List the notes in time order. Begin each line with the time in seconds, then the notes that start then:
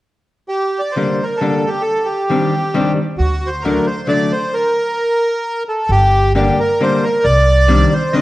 0.49 G4
0.79 D5
0.91 C5
0.96 D3 G3 A#3 D4
1.23 A#4
1.36 A4
1.41 D3 G3 A#3 D4
1.67 G4
1.81 A4
2.05 G4
2.30 D#3 G3 C4 D4
2.74 D#3 G3 C4 D4
3.18 D2 F#4
3.47 C5
3.62 D3 F#3 A#4
3.66 A3 D4
3.87 C5
4.07 D3 F#3 A3 D4 D5
4.32 C5
4.54 A#4
5.69 A4
5.89 G1 G4
6.35 D3 G3 A#3 D4 G4
6.59 A#4
6.80 D3 G3 A#3 D4 C5
7.04 A#4
7.24 C2 D5
7.68 D#3 G3 C4 D4
7.93 C5
8.13 D#3 G3 C4 D4 D#5